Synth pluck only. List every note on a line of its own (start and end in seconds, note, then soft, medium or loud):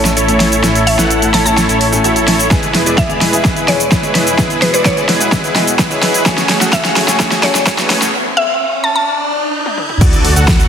0.87 1.31 E5 medium
1.34 1.41 A5 medium
1.46 1.53 A5 medium
2.98 3.10 E5 medium
3.68 3.80 C#5 medium
4.62 4.69 B4 medium
4.74 4.81 B4 medium
4.86 5.51 C#5 medium
6.73 6.85 E5 medium
7.43 7.55 C#5 medium
8.37 8.82 E5 loud
8.84 8.91 A5 medium
8.96 9.03 A5 medium